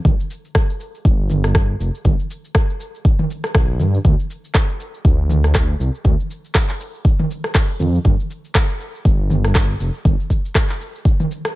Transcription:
0.05 detuned saw bass G1, kick, mid tom, shaker
0.20 shaker
0.30 shaker
0.45 shaker
0.55 kick, cross-stick, shaker
0.70 shaker
0.80 shaker
0.95 shaker
1.05 detuned saw bass G1, kick, shaker
1.30 mid tom, shaker
1.44 cross-stick, shaker
1.55 kick, cross-stick, shaker
1.80 detuned saw bass F1, shaker
1.95 shaker
2.05 detuned saw bass G1, kick, mid tom, shaker
2.20 shaker
2.30 shaker
2.45 shaker
2.55 kick, cross-stick, shaker
2.69 shaker
2.80 shaker
2.95 shaker
3.05 kick, shaker
3.19 mid tom
3.30 shaker
3.44 cross-stick, shaker
3.55 detuned saw bass B1, kick, cross-stick, shaker
3.79 detuned saw bass G2, mid tom, shaker
3.94 shaker
4.05 detuned saw bass D2, kick, mid tom, shaker
4.20 shaker
4.30 shaker
4.45 shaker
4.55 kick, cross-stick, clap, shaker
4.70 shaker
4.80 shaker
4.94 shaker
5.05 detuned saw bass D2, kick, shaker
5.30 mid tom, shaker
5.44 cross-stick, shaker
5.55 kick, cross-stick, clap, shaker
5.80 detuned saw bass C2, shaker
5.95 shaker
6.04 detuned saw bass D2, kick, mid tom, shaker
6.20 shaker
6.30 shaker
6.45 shaker
6.55 kick, cross-stick, clap, shaker
6.69 clap, shaker
6.81 shaker
6.95 shaker
7.05 kick, shaker
7.19 mid tom
7.31 shaker
7.44 cross-stick, shaker
7.55 kick, cross-stick, clap, shaker
7.80 detuned saw bass F2, mid tom, shaker
7.95 shaker
8.05 detuned saw bass G1, kick, mid tom, shaker
8.20 shaker
8.31 shaker
8.45 shaker
8.55 kick, cross-stick, clap, shaker
8.70 shaker
8.81 shaker
8.95 shaker
9.05 detuned saw bass G1, kick, shaker
9.30 mid tom, shaker
9.44 cross-stick, shaker
9.55 kick, cross-stick, clap, shaker
9.80 detuned saw bass F1, shaker
9.95 shaker
10.05 detuned saw bass G1, kick, mid tom, shaker
10.20 shaker
10.30 kick, shaker
10.45 shaker
10.55 kick, cross-stick, clap, shaker
10.70 clap, shaker
10.81 shaker
10.95 shaker
11.05 kick, shaker
11.20 mid tom, shaker
11.31 shaker
11.45 cross-stick, shaker

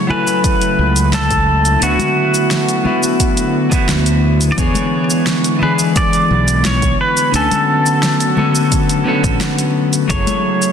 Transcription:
Already playing: analog synth pad C#3 F#3 A3 E4
0.07 clean electric guitar F#3 E4 G#5, pedal steel guitar B4, low conga
0.12 clean electric guitar A4
0.27 shaker
0.44 kick, closed hi-hat, shaker
0.61 closed hi-hat, shaker
0.79 fingered electric bass C#2
0.96 closed hi-hat, shaker
1.13 pedal steel guitar A4, snare, closed hi-hat, high conga, shaker
1.31 kick, closed hi-hat, shaker
1.65 closed hi-hat, shaker
1.80 fingered electric bass D2, clean electric guitar D3 B3 E4, analog synth pad D3 B3, pedal steel guitar F#4, closed hi-hat, shaker
1.84 clean electric guitar F#4
1.99 closed hi-hat, high conga, shaker
2.34 shaker
2.51 snare, closed hi-hat, shaker
2.69 closed hi-hat, shaker
2.83 clean electric guitar D3 B3 E4, high conga, low conga
2.88 clean electric guitar F#4
3.03 shaker
3.20 kick, closed hi-hat, shaker
3.37 closed hi-hat, shaker
3.70 clean electric guitar D3 B3 E4, kick, closed hi-hat, shaker
3.74 clean electric guitar F#4
3.89 fingered electric bass D2, snare, closed hi-hat, high conga, shaker
4.06 closed hi-hat, shaker
4.41 closed hi-hat, shaker
4.52 clean electric guitar E3, pedal steel guitar D5
4.57 fingered electric bass E2, analog synth pad E3 G#3, clean electric guitar B3 D4 G#4, pedal steel guitar C#5, kick, closed hi-hat, shaker
4.75 closed hi-hat, high conga, shaker
5.10 shaker
5.27 snare, closed hi-hat, shaker
5.44 closed hi-hat, shaker
5.59 clean electric guitar E3 B3 D4, pedal steel guitar B4, low conga
5.63 clean electric guitar G#4
5.79 shaker
5.96 pedal steel guitar D5, kick, closed hi-hat, shaker
6.13 closed hi-hat, shaker
6.31 fingered electric bass B1
6.48 closed hi-hat, shaker
6.64 pedal steel guitar C#5, snare, closed hi-hat, high conga, shaker
6.82 kick, closed hi-hat, shaker
6.99 analog synth pad D3 F#3 A3 B3 F#4, pedal steel guitar B4
7.17 closed hi-hat, shaker
7.32 fingered electric bass D2, clean electric guitar D3 B3 C#4, closed hi-hat, shaker
7.36 pedal steel guitar A4, clean electric guitar G#5
7.51 closed hi-hat, high conga, shaker
7.86 shaker
8.03 snare, closed hi-hat, shaker
8.20 closed hi-hat, shaker
8.36 clean electric guitar D3 B3 C#4 A4, high conga, low conga
8.55 shaker
8.72 kick, closed hi-hat, shaker
8.89 closed hi-hat, shaker
9.04 clean electric guitar D3 B3 C#4
9.08 clean electric guitar A4
9.24 fingered electric bass A1, kick, closed hi-hat, shaker
9.40 snare, closed hi-hat, high conga, shaker
9.59 closed hi-hat, shaker
9.93 closed hi-hat, shaker
10.08 fingered electric bass F#1, analog synth pad C#3 E4, clean electric guitar F#3 E4 G#4, pedal steel guitar C#5, kick, closed hi-hat, shaker
10.12 clean electric guitar A4
10.27 closed hi-hat, high conga, shaker
10.62 shaker

